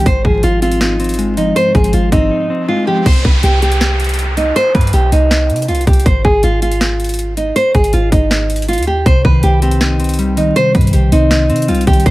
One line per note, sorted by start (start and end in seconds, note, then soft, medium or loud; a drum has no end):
0.06 0.24 G#1 loud
0.06 1.00 G#2 medium
0.06 0.23 C5 loud
0.06 kick loud
0.06 closed hi-hat medium
0.24 0.43 G#1 loud
0.24 1.18 F3 medium
0.24 0.42 G#4 medium
0.24 kick medium
0.43 1.52 G#1 loud
0.43 0.60 F4 medium
0.43 closed hi-hat medium
0.62 0.98 C4 medium
0.62 1.33 F4 medium
0.62 closed hi-hat medium
0.72 closed hi-hat medium
0.81 1.75 D#4 medium
0.81 snare loud
0.81 closed hi-hat medium
1.00 1.93 C4 medium
1.00 closed hi-hat soft
1.04 closed hi-hat medium
1.09 closed hi-hat medium
1.14 closed hi-hat medium
1.18 2.12 G#3 medium
1.18 closed hi-hat medium
1.37 1.73 F3 medium
1.37 1.54 D#4 medium
1.37 closed hi-hat medium
1.56 2.49 G#2 medium
1.56 1.73 C5 loud
1.56 closed hi-hat medium
1.56 riser medium
1.75 1.93 G#1 loud
1.75 2.68 F3 medium
1.75 1.92 G#4 medium
1.75 kick medium
1.75 closed hi-hat soft
1.84 closed hi-hat medium
1.93 2.11 G#1 loud
1.93 2.10 F4 medium
1.93 closed hi-hat medium
2.12 2.30 G#1 loud
2.12 2.49 C4 loud
2.12 2.65 D#4 medium
2.12 kick medium
2.12 closed hi-hat medium
2.31 3.06 D#4 medium
2.50 3.06 C4 medium
2.68 3.06 G#3 loud
2.68 2.85 F4 medium
2.87 3.06 F3 medium
2.87 3.04 G4 medium
3.06 3.24 C2 loud
3.06 3.23 C5 loud
3.06 kick loud
3.06 closed hi-hat medium
3.06 crash loud
3.06 downlifter medium
3.25 3.43 C2 loud
3.25 3.42 B4 medium
3.25 kick loud
3.43 4.52 C2 loud
3.43 3.60 G4 medium
3.43 closed hi-hat medium
3.62 4.33 G4 medium
3.62 closed hi-hat medium
3.72 closed hi-hat medium
3.81 snare loud
3.81 closed hi-hat medium
4.00 closed hi-hat soft
4.04 closed hi-hat medium
4.09 closed hi-hat medium
4.14 closed hi-hat medium
4.19 closed hi-hat medium
4.37 4.54 D#4 medium
4.37 closed hi-hat medium
4.56 4.73 C5 loud
4.56 closed hi-hat medium
4.75 4.93 G2 loud
4.75 4.92 B4 medium
4.75 kick loud
4.75 closed hi-hat soft
4.81 closed hi-hat medium
4.87 closed hi-hat medium
4.93 5.11 B1 loud
4.93 5.10 G4 medium
4.93 closed hi-hat medium
5.12 5.51 C2 loud
5.12 5.65 D#4 medium
5.12 closed hi-hat medium
5.31 snare loud
5.31 closed hi-hat medium
5.50 5.70 C3 loud
5.50 closed hi-hat soft
5.56 closed hi-hat medium
5.62 closed hi-hat medium
5.68 5.86 C2 loud
5.68 5.85 F4 medium
5.68 closed hi-hat soft
5.75 closed hi-hat medium
5.81 closed hi-hat medium
5.87 6.05 C2 loud
5.87 6.04 G4 medium
5.87 kick loud
5.87 closed hi-hat medium
5.93 closed hi-hat medium
6.00 closed hi-hat medium
6.06 6.24 G#1 loud
6.06 6.23 C5 loud
6.06 kick loud
6.06 closed hi-hat medium
6.25 6.43 G#1 loud
6.25 6.42 G#4 medium
6.25 kick medium
6.43 7.52 G#1 loud
6.43 6.60 F4 medium
6.43 closed hi-hat medium
6.62 7.33 F4 medium
6.62 closed hi-hat medium
6.71 closed hi-hat medium
6.81 snare loud
6.81 closed hi-hat medium
7.00 closed hi-hat soft
7.04 closed hi-hat medium
7.09 closed hi-hat medium
7.14 closed hi-hat medium
7.19 closed hi-hat medium
7.37 7.54 D#4 medium
7.37 closed hi-hat medium
7.56 7.73 C5 loud
7.56 closed hi-hat medium
7.75 7.93 G#1 loud
7.75 7.92 G#4 medium
7.75 kick medium
7.75 closed hi-hat soft
7.84 closed hi-hat medium
7.93 8.11 G#1 loud
7.93 8.10 F4 medium
7.93 closed hi-hat medium
8.12 8.79 G#1 loud
8.12 8.65 D#4 medium
8.12 kick loud
8.12 closed hi-hat medium
8.31 snare loud
8.31 closed hi-hat medium
8.50 closed hi-hat medium
8.56 closed hi-hat medium
8.62 closed hi-hat medium
8.68 8.85 F4 medium
8.68 closed hi-hat medium
8.73 closed hi-hat medium
8.78 9.05 D#2 loud
8.78 closed hi-hat medium
8.82 closed hi-hat medium
8.87 9.04 G4 medium
9.06 9.24 C2 loud
9.06 10.00 C3 medium
9.06 9.23 C5 loud
9.06 kick loud
9.06 closed hi-hat medium
9.25 9.43 C2 loud
9.25 10.18 D#3 medium
9.25 9.42 B4 medium
9.25 kick medium
9.43 10.52 C2 loud
9.43 9.60 G4 medium
9.43 closed hi-hat medium
9.62 9.98 C4 loud
9.62 10.33 G4 medium
9.62 closed hi-hat medium
9.71 closed hi-hat medium
9.81 10.75 D#4 medium
9.81 snare loud
9.81 closed hi-hat medium
10.00 10.93 C4 medium
10.00 closed hi-hat soft
10.04 closed hi-hat medium
10.09 closed hi-hat medium
10.14 closed hi-hat medium
10.19 11.12 G3 medium
10.19 closed hi-hat medium
10.37 10.73 D#3 medium
10.37 10.54 D#4 medium
10.37 closed hi-hat medium
10.56 11.50 C3 medium
10.56 10.73 C5 loud
10.56 closed hi-hat medium
10.75 10.93 G2 loud
10.75 11.68 D#3 medium
10.75 10.92 B4 medium
10.75 kick medium
10.75 closed hi-hat soft
10.81 closed hi-hat medium
10.87 closed hi-hat medium
10.93 11.11 B1 loud
10.93 11.10 G4 medium
10.93 closed hi-hat medium
11.12 11.51 C2 loud
11.12 11.48 C4 loud
11.12 11.65 D#4 medium
11.12 closed hi-hat medium
11.31 12.06 D#4 medium
11.31 snare loud
11.31 closed hi-hat medium
11.50 11.70 C3 loud
11.50 12.06 C4 medium
11.50 closed hi-hat soft
11.56 closed hi-hat medium
11.62 closed hi-hat medium
11.68 11.86 C2 loud
11.68 12.06 G3 medium
11.68 11.85 F4 medium
11.68 closed hi-hat soft
11.75 closed hi-hat medium
11.81 closed hi-hat medium
11.87 12.05 C2 loud
11.87 12.06 D#3 medium
11.87 12.04 G4 medium
11.87 kick loud
11.87 closed hi-hat medium
11.93 closed hi-hat medium
12.00 closed hi-hat medium
12.06 12.11 G#1 loud
12.06 12.11 G#2 medium
12.06 12.11 C5 loud
12.06 kick loud
12.06 closed hi-hat medium